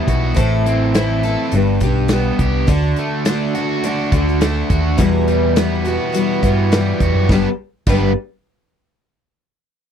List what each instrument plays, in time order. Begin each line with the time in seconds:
Already playing: overdriven electric guitar E2 G3, twelve-string acoustic guitar G3 B3 E4 F#4
0.07 picked electric bass B1, overdriven electric guitar F#4, kick, closed hi-hat
0.34 picked electric bass A1, twelve-string acoustic guitar A2 E3 C4 E4 A4, kick, closed hi-hat
0.66 overdriven electric guitar C4, closed hi-hat
0.94 twelve-string acoustic guitar E3 C4 E4 A4, snare, closed hi-hat
1.23 twelve-string acoustic guitar E4 A4, closed hi-hat
1.28 twelve-string acoustic guitar C4
1.52 picked electric bass G1, overdriven electric guitar G2, twelve-string acoustic guitar G3 B3, closed hi-hat
1.56 twelve-string acoustic guitar D4 G4
1.80 picked electric bass B1, twelve-string acoustic guitar D4 G4, kick, closed hi-hat
1.85 twelve-string acoustic guitar G3 B3
2.08 twelve-string acoustic guitar G3 B3, snare, closed hi-hat
2.12 twelve-string acoustic guitar D4 G4
2.39 picked electric bass C2, overdriven electric guitar G4, kick, closed hi-hat
2.67 picked electric bass D2, twelve-string acoustic guitar D3 A3 D4 F#4, kick, closed hi-hat
2.96 overdriven electric guitar A3, closed hi-hat
3.25 twelve-string acoustic guitar D3 A3 D4 F#4, snare, closed hi-hat
3.55 twelve-string acoustic guitar A3 D4 F#4, closed hi-hat
3.84 twelve-string acoustic guitar D3 A3 D4 F#4, closed hi-hat
4.12 picked electric bass D2, overdriven electric guitar D3, twelve-string acoustic guitar A3 D4 F#4, kick, closed hi-hat
4.28 snare
4.41 twelve-string acoustic guitar D3 A3 D4 F#4, snare, closed hi-hat
4.70 picked electric bass D#2, overdriven electric guitar F#4, kick, closed hi-hat
4.98 twelve-string acoustic guitar E2 B2 E3 G3 B3 F#4, picked electric bass E2, kick, closed hi-hat
5.28 overdriven electric guitar G3, closed hi-hat
5.56 twelve-string acoustic guitar E3 G3 B3 F#4, snare, closed hi-hat
5.84 twelve-string acoustic guitar E3 G3 B3 F#4, closed hi-hat
6.13 twelve-string acoustic guitar E3 G3 B3 F#4, closed hi-hat
6.42 picked electric bass G2, twelve-string acoustic guitar E3 G3 B3 F#4, kick, closed hi-hat
6.71 twelve-string acoustic guitar E3 G3 B3 F#4, snare, closed hi-hat
7.00 picked electric bass E2, overdriven electric guitar F#4, kick, closed hi-hat
7.14 picked electric bass F#2
7.29 picked electric bass G1, twelve-string acoustic guitar G2 D3 G3 B3 D4, overdriven electric guitar B4, kick, snare
7.33 twelve-string acoustic guitar G4
7.87 picked electric bass G1, twelve-string acoustic guitar G2 D3 G3 B3 D4 G4, overdriven electric guitar B4, kick, crash